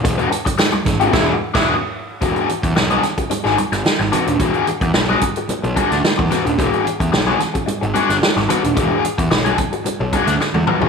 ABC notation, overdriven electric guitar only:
X:1
M:4/4
L:1/16
Q:1/4=110
K:Emix
V:1 name="Overdriven electric guitar"
z [DFB] z4 z [DFG] [DFG]2 z [DFG]2 z3 | [DFG]2 z3 [DFG] z3 [DFG] z4 [DFB] z | [DFG]2 z3 [DFG] z4 [DFG] z3 [DFB] z | [DFG]2 z3 [DFG] z4 [DFG] z3 [DFB] z |
[DFG]2 z3 [DFG] z4 [DFG] z3 [DFB] [DFG] |]